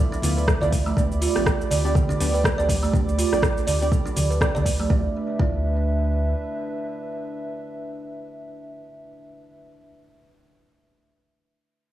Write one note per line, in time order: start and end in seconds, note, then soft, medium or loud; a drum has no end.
0.00 0.93 F3 medium
0.00 0.21 B3 medium
0.00 0.21 E4 medium
0.00 0.21 F4 medium
0.00 0.12 A4 medium
0.00 0.21 D5 loud
0.00 0.93 E5 medium
0.00 4.86 B5 medium
0.00 0.93 D6 medium
0.12 0.22 D4 loud
0.12 high conga medium
0.12 shaker soft
0.22 0.53 D2 medium
0.22 0.58 B3 medium
0.22 0.58 E4 medium
0.22 0.58 F4 medium
0.22 0.58 D5 loud
0.22 open hi-hat medium
0.22 high conga medium
0.22 low conga loud
0.22 shaker medium
0.37 0.43 B4 medium
0.37 shaker soft
0.48 kick loud
0.48 cross-stick loud
0.48 high conga medium
0.48 shaker medium
0.61 0.90 D2 loud
0.61 0.94 B3 medium
0.61 0.94 E4 medium
0.61 0.94 F4 medium
0.61 0.72 D5 loud
0.61 0.94 D5 loud
0.61 low conga loud
0.61 shaker soft
0.72 kick medium
0.72 open hi-hat medium
0.72 shaker medium
0.86 0.96 A3 loud
0.86 high conga medium
0.86 shaker soft
0.97 1.27 D2 loud
0.97 1.09 B3 medium
0.97 1.09 D4 medium
0.97 1.10 D4 medium
0.97 1.09 G4 medium
0.97 4.86 G4 medium
0.97 1.09 D5 medium
0.97 4.87 D5 medium
0.97 4.87 D6 medium
0.97 kick loud
0.97 high conga medium
0.97 shaker medium
1.12 shaker soft
1.21 1.34 F4 medium
1.21 open hi-hat loud
1.21 shaker medium
1.35 1.64 A1 medium
1.35 1.81 B3 loud
1.35 1.81 D4 medium
1.35 1.81 G4 medium
1.35 1.81 D5 loud
1.35 cross-stick medium
1.35 high conga medium
1.35 shaker soft
1.46 1.59 D4 medium
1.46 kick loud
1.46 cross-stick loud
1.46 shaker medium
1.61 shaker soft
1.70 2.01 D2 medium
1.70 1.84 D5 medium
1.70 open hi-hat medium
1.70 low conga loud
1.70 shaker medium
1.84 2.17 B3 medium
1.84 2.17 D4 medium
1.84 2.17 G4 medium
1.84 2.17 D5 loud
1.84 shaker soft
1.95 2.09 A4 medium
1.95 kick loud
1.95 low conga loud
1.95 shaker medium
2.09 2.19 D4 loud
2.09 low conga loud
2.09 shaker soft
2.20 2.50 D2 medium
2.20 2.55 B3 medium
2.20 2.55 D4 medium
2.20 2.55 G4 medium
2.20 2.55 D5 loud
2.20 open hi-hat medium
2.20 high conga medium
2.20 shaker medium
2.34 2.40 B4 medium
2.34 shaker soft
2.44 kick loud
2.44 cross-stick loud
2.44 shaker medium
2.58 2.87 D2 loud
2.58 2.91 B3 medium
2.58 2.91 D4 medium
2.58 2.91 G4 medium
2.58 2.68 D5 loud
2.58 2.91 D5 loud
2.58 shaker soft
2.69 kick medium
2.69 open hi-hat medium
2.69 high conga medium
2.69 shaker medium
2.83 2.93 A3 loud
2.83 shaker soft
2.93 3.24 D2 loud
2.93 3.06 B3 medium
2.93 3.07 D4 medium
2.93 3.06 D4 medium
2.93 3.06 G4 medium
2.93 3.06 D5 medium
2.93 kick loud
2.93 high conga medium
2.93 shaker medium
3.09 shaker soft
3.18 3.31 F4 medium
3.18 open hi-hat loud
3.18 shaker medium
3.32 3.61 A1 medium
3.32 3.78 B3 loud
3.32 3.78 D4 medium
3.32 3.78 G4 medium
3.32 3.78 D5 loud
3.32 cross-stick medium
3.32 high conga medium
3.32 shaker soft
3.43 3.55 D4 medium
3.43 kick loud
3.43 cross-stick loud
3.43 shaker medium
3.58 shaker soft
3.67 3.97 D2 medium
3.67 3.81 D5 medium
3.67 open hi-hat medium
3.67 low conga loud
3.67 shaker medium
3.82 4.14 B3 loud
3.82 4.14 D4 medium
3.82 4.14 G4 medium
3.82 4.14 D5 loud
3.82 shaker soft
3.92 4.05 A4 medium
3.92 kick loud
3.92 shaker medium
4.06 4.15 D4 loud
4.06 high conga medium
4.06 shaker soft
4.16 4.47 D2 medium
4.16 open hi-hat loud
4.16 high conga medium
4.16 low conga loud
4.16 shaker medium
4.30 4.36 B4 medium
4.30 shaker soft
4.41 4.53 B3 loud
4.41 4.53 D4 medium
4.41 4.53 G4 loud
4.41 4.53 D5 loud
4.41 kick loud
4.41 cross-stick loud
4.41 high conga medium
4.41 shaker medium
4.55 4.84 D2 loud
4.55 4.64 B3 medium
4.55 4.64 D4 medium
4.55 4.64 G4 medium
4.55 4.65 D5 loud
4.55 4.64 D5 medium
4.55 low conga loud
4.55 shaker soft
4.66 kick medium
4.66 open hi-hat medium
4.66 shaker medium
4.79 4.90 A3 loud
4.79 high conga loud
4.79 shaker soft
4.90 5.05 D2 medium
4.90 5.05 B3 medium
4.90 5.05 D4 loud
4.90 9.60 D4 medium
4.90 5.06 E4 medium
4.90 5.06 F4 medium
4.90 9.60 B4 medium
4.90 5.06 D5 medium
4.90 9.60 E5 medium
4.90 kick loud
5.39 6.34 D2 loud
5.39 10.30 B3 medium
5.39 5.55 D4 loud
5.39 10.30 E4 medium
5.39 10.30 F4 medium
5.39 10.30 D5 loud
5.39 kick loud